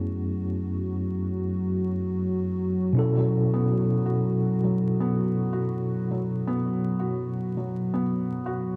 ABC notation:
X:1
M:4/4
L:1/16
Q:"Swing 16ths" 1/4=82
K:Bdor
V:1 name="Tine electric piano"
[F,,A,B,CEG]16 | [B,,CEA]16- | [B,,CEA]16 |]
V:2 name="Analog synth pad"
[F,F]16- | [F,F]16- | [F,F]16 |]
V:3 name="Felt piano"
z16 | z F,2 B, z2 F3 F,2 B, z2 F2- | F F,2 B, z2 F3 F,2 B, z2 F2 |]